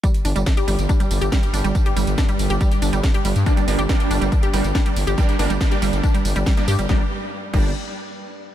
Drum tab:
CC |----------------|----------------|----------------|----------------|
HH |xxoxxxoxxxoxxxox|xxoxxxoxxxoxxxox|xxoxxxoxxxoxxxox|xxoxxxoxxxoxxxox|
TB |xxxxxxxxxxxxxxxx|xxxxxxxxxxxxxxxx|xxxxxxxxxxxxxxxx|xxxxxxxxxxxxxxxx|
SD |----o-------o---|----o-------o---|----o-------o---|----o-------o---|
BD |o---o---o---o---|o---o---o---o---|o---o---o---o---|o---o---o---o---|

CC |------x---------|
HH |----------------|
TB |----------------|
SD |o---------------|
BD |o-----o---------|